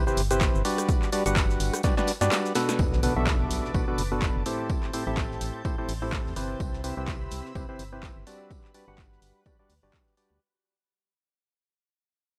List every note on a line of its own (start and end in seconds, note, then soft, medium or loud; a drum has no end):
0.07 0.21 C3 loud
0.07 0.21 C4 medium
0.07 0.21 E4 medium
0.07 0.21 G4 medium
0.07 0.21 B4 medium
0.07 0.21 C5 loud
0.07 cabasa soft
0.17 0.50 G1 loud
0.17 open hi-hat loud
0.17 tambourine medium
0.31 0.62 C3 medium
0.31 0.62 C4 medium
0.31 0.62 E4 medium
0.31 0.62 G4 medium
0.31 0.62 B4 medium
0.31 0.62 C5 loud
0.31 closed hi-hat medium
0.31 cabasa medium
0.41 kick loud
0.41 snare loud
0.41 clap loud
0.41 closed hi-hat medium
0.41 tambourine medium
0.41 cabasa medium
0.54 0.63 G1 loud
0.54 cabasa soft
0.65 1.10 G3 medium
0.65 1.10 D4 medium
0.65 1.10 F#4 medium
0.65 1.10 G4 medium
0.65 1.10 B4 medium
0.65 1.10 D5 loud
0.65 open hi-hat loud
0.65 tambourine medium
0.78 cross-stick medium
0.78 closed hi-hat medium
0.78 cabasa medium
0.88 kick loud
0.88 closed hi-hat medium
0.88 tambourine medium
0.88 cabasa medium
1.02 snare soft
1.02 clap soft
1.02 cabasa soft
1.12 1.23 G3 medium
1.12 1.23 D4 medium
1.12 1.23 F#4 medium
1.12 1.23 G4 medium
1.12 1.23 B4 medium
1.12 1.23 D5 loud
1.12 open hi-hat loud
1.12 tambourine medium
1.26 1.56 G1 loud
1.26 1.81 G3 medium
1.26 1.81 D4 medium
1.26 1.81 F#4 medium
1.26 1.81 G4 medium
1.26 1.81 B4 medium
1.26 1.81 F#5 medium
1.26 closed hi-hat medium
1.26 cabasa medium
1.36 kick loud
1.36 snare loud
1.36 clap loud
1.36 closed hi-hat medium
1.36 tambourine medium
1.36 cabasa medium
1.49 snare soft
1.49 cabasa soft
1.60 1.71 G1 medium
1.60 open hi-hat loud
1.60 tambourine medium
1.74 cross-stick medium
1.74 closed hi-hat medium
1.74 cabasa medium
1.83 1.95 G3 medium
1.83 1.95 D4 medium
1.83 1.95 F#4 medium
1.83 1.95 G4 medium
1.83 1.95 B4 medium
1.83 1.95 D5 loud
1.83 kick loud
1.83 snare medium
1.83 closed hi-hat medium
1.83 tambourine medium
1.83 cabasa medium
1.97 2.12 G3 loud
1.97 2.12 D4 medium
1.97 2.12 F#4 medium
1.97 2.12 G4 medium
1.97 2.12 B4 medium
1.97 2.12 D5 loud
1.97 snare medium
1.97 cabasa soft
2.07 snare loud
2.07 open hi-hat loud
2.07 tambourine medium
2.21 2.29 G2 medium
2.21 2.53 G3 medium
2.21 2.53 D4 medium
2.21 2.53 F#4 medium
2.21 2.53 G4 medium
2.21 2.53 B4 medium
2.21 2.53 D5 loud
2.21 snare medium
2.21 closed hi-hat medium
2.21 cabasa medium
2.31 snare medium
2.31 snare loud
2.31 clap loud
2.31 closed hi-hat medium
2.31 tambourine medium
2.31 cabasa medium
2.44 snare medium
2.44 cabasa soft
2.55 3.01 B2 medium
2.55 3.01 B3 medium
2.55 3.01 D4 medium
2.55 3.01 F#4 medium
2.55 3.01 A4 medium
2.55 3.01 B4 medium
2.55 snare loud
2.55 open hi-hat loud
2.55 tambourine medium
2.69 snare medium
2.69 closed hi-hat medium
2.69 cabasa medium
2.79 3.12 B1 loud
2.79 4.68 B4 medium
2.79 6.56 A5 medium
2.79 4.68 D6 medium
2.79 kick loud
2.79 tambourine medium
2.79 impact medium
2.92 snare medium
3.03 3.14 B2 medium
3.03 3.14 B3 medium
3.03 3.14 D4 medium
3.03 3.14 F#4 medium
3.03 3.14 A4 medium
3.03 3.14 B4 medium
3.03 open hi-hat loud
3.03 tambourine medium
3.16 3.47 B1 medium
3.16 3.72 B2 medium
3.16 3.72 B3 medium
3.16 3.72 D4 medium
3.16 3.72 F#4 medium
3.16 3.72 A4 medium
3.16 3.72 E5 medium
3.27 kick loud
3.27 snare loud
3.27 clap loud
3.27 tambourine medium
3.51 3.61 B1 medium
3.51 open hi-hat loud
3.51 tambourine medium
3.64 snare soft
3.74 3.85 B1 loud
3.74 3.85 B2 medium
3.74 3.85 B3 medium
3.74 3.85 D4 medium
3.74 3.85 F#4 medium
3.74 3.85 A4 medium
3.74 3.85 B4 medium
3.74 kick loud
3.74 tambourine medium
3.88 4.02 B2 loud
3.88 4.02 B3 medium
3.88 4.02 D4 medium
3.88 4.02 F#4 medium
3.88 4.02 A4 medium
3.88 4.02 B4 loud
3.98 4.31 F#1 loud
3.98 open hi-hat loud
3.98 tambourine medium
4.12 4.43 B2 medium
4.12 4.43 B3 medium
4.12 4.43 D4 medium
4.12 4.43 F#4 medium
4.12 4.43 A4 medium
4.12 4.43 B4 loud
4.22 kick loud
4.22 snare loud
4.22 clap loud
4.22 tambourine medium
4.35 4.44 F#1 loud
4.46 4.91 A2 medium
4.46 4.91 C4 medium
4.46 4.91 E4 medium
4.46 4.91 G4 medium
4.46 4.91 A4 medium
4.46 4.91 C5 medium
4.46 open hi-hat loud
4.46 tambourine medium
4.70 8.47 C4 medium
4.70 6.58 G6 medium
4.70 kick loud
4.70 tambourine medium
4.82 snare soft
4.82 clap soft
4.93 5.04 A2 medium
4.93 5.04 C4 medium
4.93 5.04 E4 medium
4.93 5.04 G4 medium
4.93 5.04 A4 medium
4.93 5.04 C5 medium
4.93 open hi-hat loud
4.93 tambourine medium
5.07 5.37 A1 medium
5.07 5.62 A2 medium
5.07 5.62 C4 medium
5.07 5.62 E4 medium
5.07 5.62 G4 medium
5.07 5.62 A4 medium
5.07 5.62 E5 medium
5.17 kick loud
5.17 snare loud
5.17 clap loud
5.17 tambourine medium
5.31 snare soft
5.41 5.51 A1 medium
5.41 open hi-hat loud
5.41 tambourine medium
5.65 5.76 A2 medium
5.65 5.76 C4 medium
5.65 5.76 E4 medium
5.65 5.76 G4 medium
5.65 5.76 A4 medium
5.65 5.76 C5 medium
5.65 kick loud
5.65 tambourine medium
5.78 5.93 A2 medium
5.78 5.93 C4 medium
5.78 5.93 E4 medium
5.78 5.93 G4 medium
5.78 5.93 A4 medium
5.78 5.93 C5 loud
5.89 6.27 A1 loud
5.89 open hi-hat medium
5.89 open hi-hat loud
6.02 6.34 A2 medium
6.02 6.34 C4 medium
6.02 6.34 E4 medium
6.02 6.34 G4 medium
6.02 6.34 A4 medium
6.02 6.34 C5 loud
6.12 kick loud
6.12 snare loud
6.12 clap loud
6.12 tambourine medium
6.26 6.34 E2 medium
6.26 snare soft
6.36 6.55 G1 medium
6.36 6.81 C3 medium
6.36 6.81 C4 medium
6.36 6.81 E4 medium
6.36 6.81 G4 medium
6.36 6.81 B4 medium
6.36 6.81 C5 medium
6.36 open hi-hat loud
6.36 tambourine medium
6.60 6.93 C2 medium
6.60 8.49 B5 medium
6.60 8.49 E6 medium
6.60 kick loud
6.60 tambourine medium
6.73 snare medium
6.84 6.95 C3 medium
6.84 6.95 C4 medium
6.84 6.95 E4 medium
6.84 6.95 G4 medium
6.84 6.95 B4 medium
6.84 6.95 C5 medium
6.84 open hi-hat loud
6.84 tambourine medium
6.97 7.28 C2 loud
6.97 7.53 C3 medium
6.97 7.53 C4 medium
6.97 7.53 E4 medium
6.97 7.53 G4 medium
6.97 7.53 B4 medium
6.97 7.53 C5 medium
7.07 kick loud
7.07 snare loud
7.07 clap loud
7.07 tambourine medium
7.31 7.42 C2 medium
7.31 open hi-hat loud
7.31 tambourine medium
7.45 snare soft
7.55 7.66 C2 loud
7.55 7.66 C3 medium
7.55 7.66 C4 medium
7.55 7.66 E4 medium
7.55 7.66 G4 medium
7.55 7.66 B4 medium
7.55 7.66 C5 loud
7.55 kick loud
7.55 tambourine medium
7.69 7.83 C3 medium
7.69 7.83 C4 medium
7.69 7.83 E4 medium
7.69 7.83 G4 medium
7.69 7.83 B4 medium
7.69 7.83 C5 loud
7.79 8.12 G1 loud
7.79 open hi-hat loud
7.79 tambourine medium
7.93 8.24 C3 medium
7.93 8.24 C4 medium
7.93 8.24 E4 medium
7.93 8.24 G4 medium
7.93 8.24 B4 medium
7.93 8.24 C5 loud
8.03 kick loud
8.03 snare loud
8.03 clap loud
8.03 tambourine medium
8.16 8.24 G1 loud
8.27 8.72 G3 medium
8.27 8.72 D4 medium
8.27 8.72 F#4 medium
8.27 8.72 G4 medium
8.27 8.72 B4 medium
8.27 8.72 D5 medium
8.27 open hi-hat loud
8.27 tambourine medium
8.51 10.39 B4 medium
8.51 10.39 F#6 medium
8.51 kick loud
8.51 tambourine medium
8.64 snare soft
8.64 clap soft
8.74 8.85 G3 medium
8.74 8.85 D4 medium
8.74 8.85 F#4 medium
8.74 8.85 G4 medium
8.74 8.85 B4 medium
8.74 8.85 D5 medium
8.74 open hi-hat loud
8.74 tambourine medium
8.88 9.18 G1 medium
8.88 9.43 G3 medium
8.88 9.43 D4 medium
8.88 9.43 F#4 medium
8.88 9.43 G4 medium
8.88 9.43 B4 medium
8.88 9.43 F#5 medium
8.98 kick loud
8.98 snare loud
8.98 clap loud
8.98 tambourine medium
9.12 snare soft
9.22 9.32 G1 medium
9.22 open hi-hat loud
9.22 tambourine medium
9.46 9.57 G3 medium
9.46 9.57 D4 medium
9.46 9.57 F#4 medium
9.46 9.57 G4 medium
9.46 9.57 B4 medium
9.46 9.57 D5 medium
9.46 kick loud
9.46 tambourine medium
9.59 9.74 G3 medium
9.59 9.74 D4 medium
9.59 9.74 F#4 medium
9.59 9.74 G4 medium
9.59 9.74 B4 medium
9.59 9.74 D5 loud
9.69 9.80 D2 medium
9.69 open hi-hat medium
9.69 open hi-hat loud
9.83 9.91 G1 medium
9.83 10.15 G3 medium
9.83 10.15 D4 medium
9.83 10.15 F#4 medium
9.83 10.15 G4 medium
9.83 10.15 B4 medium
9.83 10.15 D5 medium
9.93 kick loud
9.93 snare loud
9.93 clap loud
9.93 tambourine medium
10.06 snare soft
10.17 10.40 G3 medium
10.17 10.40 D4 medium
10.17 10.40 F#4 medium
10.17 10.40 G4 medium
10.17 10.40 B4 medium
10.17 10.40 D5 medium
10.17 open hi-hat loud
10.17 tambourine medium
10.31 10.39 D2 medium